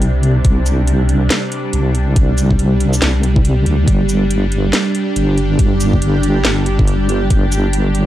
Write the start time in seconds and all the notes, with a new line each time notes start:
Already playing: C2 C3 G3 D4
0.02 closed hi-hat
0.23 closed hi-hat
0.45 C2, kick, closed hi-hat
0.66 closed hi-hat, shaker
0.88 closed hi-hat
1.09 closed hi-hat
1.30 snare, closed hi-hat
1.52 closed hi-hat
1.73 C2, closed hi-hat
1.95 closed hi-hat
2.16 C2, kick, closed hi-hat
2.38 closed hi-hat, shaker
2.51 kick
2.59 closed hi-hat
2.80 closed hi-hat
2.93 shaker
3.02 C2, snare, closed hi-hat
3.23 closed hi-hat
3.36 kick
3.45 closed hi-hat
3.66 D2, closed hi-hat
3.88 G1 D4 G4, kick, closed hi-hat
4.09 closed hi-hat, shaker
4.31 closed hi-hat
4.52 closed hi-hat
4.73 snare, closed hi-hat
4.95 closed hi-hat
5.16 G1, closed hi-hat
5.38 closed hi-hat
5.59 G1, kick, closed hi-hat
5.80 closed hi-hat, shaker
5.93 kick
6.02 closed hi-hat
6.23 closed hi-hat
6.45 G1, snare, closed hi-hat
6.66 closed hi-hat
6.79 kick
6.88 closed hi-hat
7.09 closed hi-hat
7.30 G1, kick, closed hi-hat
7.52 closed hi-hat, shaker
7.73 closed hi-hat
7.95 closed hi-hat